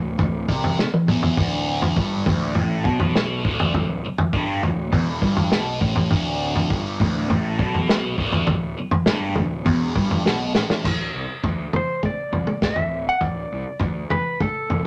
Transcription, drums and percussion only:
0.19 kick medium
0.19 floor tom medium
0.49 kick loud
0.64 floor tom medium
0.79 snare medium
0.94 high tom medium
1.08 mid tom medium
1.23 floor tom medium
1.37 kick loud
1.37 floor tom medium
1.82 floor tom medium
1.97 kick loud
2.26 kick loud
2.26 floor tom medium
2.55 floor tom medium
2.85 kick loud
3.00 floor tom medium
3.15 snare medium
3.45 kick medium
3.60 floor tom medium
3.74 kick medium
3.74 floor tom medium
4.18 floor tom medium
4.33 kick loud
4.63 floor tom medium
4.93 kick medium
4.93 floor tom medium
5.22 kick loud
5.37 floor tom medium
5.52 snare medium
5.81 kick loud
5.96 floor tom medium
6.11 kick loud
6.11 floor tom medium
6.56 floor tom medium
6.70 kick loud
7.00 kick loud
7.00 floor tom medium
7.30 floor tom medium
7.59 kick loud
7.75 floor tom medium
7.89 snare medium
8.18 kick medium
8.32 floor tom medium
8.47 kick medium
8.47 floor tom medium
8.91 floor tom loud
9.06 snare medium
9.36 floor tom medium
9.36 mid tom medium
9.66 kick loud
9.66 floor tom medium
9.96 kick loud
10.11 floor tom medium
10.26 snare medium
10.55 snare medium
10.70 snare medium
10.84 kick loud
10.84 floor tom medium
10.84 crash medium
11.44 kick loud
11.44 floor tom medium
11.73 floor tom medium
11.73 mid tom medium
12.03 kick medium
12.03 mid tom medium
12.33 floor tom medium
12.47 mid tom medium
12.62 kick loud
12.62 snare medium
12.76 floor tom medium
13.21 kick loud
13.21 floor tom medium
13.80 kick loud
13.80 floor tom medium
14.10 floor tom medium
14.10 mid tom medium
14.40 kick loud
14.40 mid tom medium
14.70 floor tom medium

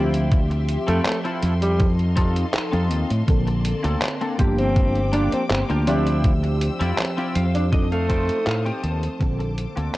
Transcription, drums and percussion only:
0.14 closed hi-hat medium
0.32 kick loud
0.32 closed hi-hat soft
0.51 closed hi-hat soft
0.69 closed hi-hat medium
0.88 closed hi-hat medium
1.06 clap loud
1.06 closed hi-hat medium
1.25 closed hi-hat soft
1.42 closed hi-hat medium
1.62 closed hi-hat medium
1.79 kick loud
1.79 closed hi-hat medium
1.99 closed hi-hat soft
2.17 kick medium
2.17 closed hi-hat medium
2.36 closed hi-hat medium
2.54 clap loud
2.54 closed hi-hat medium
2.73 closed hi-hat soft
2.91 closed hi-hat medium
3.10 closed hi-hat medium
3.28 kick loud
3.28 closed hi-hat soft
3.47 closed hi-hat soft
3.65 closed hi-hat medium
3.84 closed hi-hat medium
4.02 clap loud
4.02 closed hi-hat medium
4.21 closed hi-hat soft
4.39 kick loud
4.39 closed hi-hat medium
4.58 closed hi-hat medium
4.76 kick loud
4.76 closed hi-hat soft
4.95 closed hi-hat soft
5.13 closed hi-hat medium
5.32 closed hi-hat medium
5.50 clap loud
5.50 closed hi-hat medium
5.70 closed hi-hat soft
5.87 closed hi-hat medium
6.07 closed hi-hat medium
6.24 kick loud
6.24 closed hi-hat soft
6.44 closed hi-hat soft
6.61 closed hi-hat medium
6.81 closed hi-hat soft
6.99 clap loud
6.99 closed hi-hat medium
7.18 closed hi-hat soft
7.35 closed hi-hat medium
7.55 closed hi-hat medium
7.72 kick loud
7.72 closed hi-hat soft
7.92 closed hi-hat soft
8.10 kick medium
8.10 closed hi-hat medium
8.29 closed hi-hat soft
8.47 clap loud
8.47 closed hi-hat medium
8.66 closed hi-hat soft
8.84 closed hi-hat medium
9.03 closed hi-hat medium
9.21 kick loud
9.21 closed hi-hat medium
9.40 closed hi-hat soft
9.58 closed hi-hat medium
9.77 closed hi-hat medium

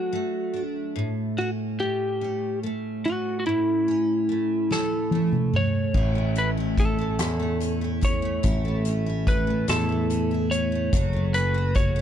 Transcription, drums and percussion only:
4.71 snare soft
5.11 high tom medium
5.32 mid tom medium
5.53 mid tom medium
5.94 kick medium
5.94 crash medium
6.35 closed hi-hat soft
6.78 kick medium
6.78 closed hi-hat soft
7.19 cross-stick medium
7.19 closed hi-hat medium
7.61 closed hi-hat soft
8.03 kick medium
8.03 closed hi-hat soft
8.43 kick medium
8.43 closed hi-hat medium
8.85 closed hi-hat soft
9.27 kick medium
9.27 cross-stick soft
9.27 closed hi-hat soft
9.68 cross-stick medium
9.68 closed hi-hat medium
10.10 closed hi-hat soft
10.52 closed hi-hat soft
10.93 kick loud
10.93 closed hi-hat medium
11.34 closed hi-hat soft
11.76 kick medium
11.76 closed hi-hat soft

